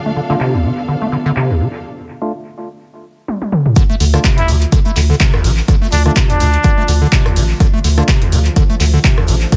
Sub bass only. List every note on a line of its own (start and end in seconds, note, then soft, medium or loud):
4.00 4.17 D2 loud
4.48 4.65 D2 medium
4.96 5.13 D2 loud
5.44 5.61 A1 loud
5.92 6.09 D2 loud
6.40 6.57 D2 medium
6.88 7.05 D2 loud
7.36 7.53 A1 loud
7.84 8.01 D2 loud
8.32 8.49 D2 medium
8.80 8.97 D2 loud
9.28 9.45 A1 medium